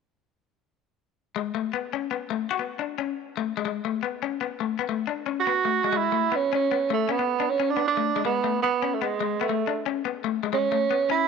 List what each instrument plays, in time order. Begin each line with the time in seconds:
1.36 clean electric guitar G#3
1.55 clean electric guitar A3
1.73 clean electric guitar B3
1.93 clean electric guitar C#4
2.11 clean electric guitar B3
2.30 clean electric guitar A3
2.51 clean electric guitar F#4
2.59 clean electric guitar B3
2.79 clean electric guitar D4
2.98 clean electric guitar C#4
3.37 clean electric guitar A3
3.57 clean electric guitar G#3
3.65 clean electric guitar G#3
3.85 clean electric guitar A3
4.03 clean electric guitar B3
4.23 clean electric guitar C#4
4.41 clean electric guitar B3
4.60 clean electric guitar A3
4.79 clean electric guitar B3
4.89 clean electric guitar A3
5.07 clean electric guitar D4
5.26 clean electric guitar C#4
5.40 tenor saxophone F#4
5.47 clean electric guitar B3
5.65 clean electric guitar A3
5.84 clean electric guitar G#3
5.92 clean electric guitar G#3
5.97 tenor saxophone E4
6.12 clean electric guitar A3
6.32 clean electric guitar B3, tenor saxophone C#4
6.53 clean electric guitar C#4, tenor saxophone C#4
6.71 clean electric guitar B3
6.90 clean electric guitar A3, tenor saxophone A3
7.09 tenor saxophone B3, clean electric guitar C#4
7.19 clean electric guitar B3
7.40 clean electric guitar D4
7.50 tenor saxophone C#4
7.60 clean electric guitar C#4
7.70 tenor saxophone D4
7.77 clean electric guitar B3
7.87 tenor saxophone D4
7.97 clean electric guitar A3
8.16 clean electric guitar G#3
8.25 clean electric guitar G#3, tenor saxophone B3
8.44 clean electric guitar A3
8.62 tenor saxophone B3, clean electric guitar B3
8.82 clean electric guitar C#4
8.94 tenor saxophone A3
9.02 tenor saxophone G#3, clean electric guitar B3
9.20 clean electric guitar G#3
9.41 tenor saxophone A3, clean electric guitar B3
9.49 clean electric guitar A3
9.67 clean electric guitar D4
9.86 clean electric guitar C#4
10.05 clean electric guitar B3
10.24 clean electric guitar A3
10.43 clean electric guitar G#3
10.53 clean electric guitar G#3, tenor saxophone C#4
10.72 clean electric guitar A3
10.91 clean electric guitar B3
11.10 clean electric guitar C#4, tenor saxophone E4